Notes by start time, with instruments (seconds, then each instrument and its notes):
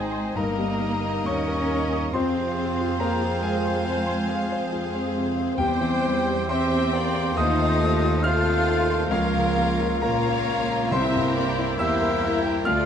Already playing: double bass section G#1, grand piano G#2 D#3 G#3 D#4 G#4 C5 D#5 G#5, cello section G#3, bassoon C4, clarinet D#4, violin section D#4 G#4 C5, viola section C5, oboe D#5, flute G#5
0.12 grand piano C6
0.36 double bass section G1, grand piano G2 A#4 A#5, bassoon A#3, french horn section A#3 D#4, cello section A#3, clarinet D#4, violin section D#4 A#4 D#5, viola section A#4, oboe D#5, flute A#5
0.58 grand piano G3
0.80 grand piano A#3
1.04 grand piano D#4
1.26 double bass section D#2, cello section C#4, violin section C#4, viola section A#4, grand piano C#5 D#5 C#6, flute C#6
1.48 grand piano A#4
1.70 grand piano D#5
1.93 grand piano D#6
2.13 double bass section F2, grand piano F2 C5 C6, bassoon C4, french horn section C4 F4, cello section C4, violin section C4 C5 F5, clarinet F4, viola section G#4, oboe C5, flute C6
2.37 grand piano C3
2.58 grand piano C4
2.81 grand piano F4
3.00 cello section A#3, grand piano A#4 C5 A#5, flute A#5
3.21 grand piano F4
3.43 cello section G#3, grand piano G#4 F5 G#5, flute G#5
3.65 grand piano C6
3.85 french horn section C4 F4, viola section C5, grand piano F5
4.06 grand piano C6
4.29 viola section G#4, grand piano F5
4.52 grand piano C5
4.72 grand piano F4
4.95 grand piano C4
5.16 grand piano C3
5.37 grand piano C4
5.57 grand piano E2 G4 G5, double bass section E2, cello section G3, bassoon C4, violin section C4 C5 G5, french horn section C4 G4, clarinet G4, viola section C5, oboe C5, flute G5
5.81 grand piano E3
6.04 grand piano C4
6.28 grand piano G4
6.49 bassoon C4, french horn section C4 G4, cello section C4, violin section C4 C5 G5, clarinet G4, oboe C5, grand piano C5 C6, viola section E5, flute C6
6.74 grand piano G4
6.94 bassoon A#3, french horn section A#3, viola section D5, grand piano G5
7.16 grand piano C6
7.36 double bass section D#2, grand piano D#2 D#5 D#6, bassoon A3, french horn section A3 F4, violin section C4 A4 F5, cello section D#4, clarinet F4, viola section C5, oboe C5, flute D#6
7.59 grand piano D#3
7.81 grand piano A3, viola section G4
8.04 grand piano F4
8.23 bassoon A3, french horn section A3 F4, violin section C4 A4 F5, cello section F4, clarinet F4, viola section A4, oboe C5, grand piano C5 F5 F6, flute F6
8.46 grand piano A4
8.68 viola section A#4, grand piano F5
8.90 grand piano C6
9.09 double bass section C#2, grand piano C#2 F4 F5, cello section F3, bassoon A#3, french horn section A#3 F4, violin section F4 A#4 F5, clarinet F4, oboe C#5, flute F5
9.34 grand piano C#3
9.58 grand piano A#3
9.81 grand piano F4
10.02 double bass section A#1, bassoon A#3, cello section A#3, french horn section A#3 F4, clarinet F4, violin section F4 A#4 F5, grand piano A#4 A#5, viola section C#5, oboe C#5, flute A#5
10.29 grand piano F4
10.50 grand piano F5
10.72 grand piano A#5
10.90 double bass section C2, grand piano C2 C5 C6, timpani C3, bassoon A#3, french horn section A#3 E4, cello section C4, clarinet E4, violin section G4 A#4 E5, oboe C5, viola section E5, flute C6
11.16 grand piano G2
11.35 grand piano A#3, viola section D5
11.58 grand piano E4
11.77 double bass section E2, bassoon A#3, french horn section A#3 E4, clarinet E4, cello section E4, grand piano G4 E5 E6, violin section G4 A#4 E5, viola section C5, oboe C5, flute E6
12.02 grand piano A#4
12.22 viola section A#4, grand piano E5
12.46 grand piano G5
12.65 double bass section D2, grand piano D2 F5 F6, french horn section A3 F4, bassoon A3, clarinet F4, cello section F4, violin section F4 A4 D5, viola section A4, oboe D5, flute F6